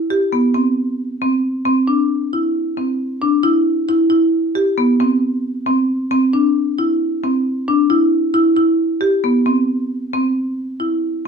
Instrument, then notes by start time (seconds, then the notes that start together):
marimba
0.10 G4
0.32 B3
0.54 C4
1.22 C4
1.66 C4
1.88 D4
2.33 E4
2.77 C4
3.22 D4
3.43 E4
3.88 E4
4.10 E4
4.55 G4
4.78 B3
5.00 C4
5.67 C4
6.11 C4
6.33 D4
6.78 E4
7.24 C4
7.68 D4
7.90 E4
8.34 E4
8.56 E4
9.01 G4
9.24 B3
9.46 C4
10.13 C4
10.80 E4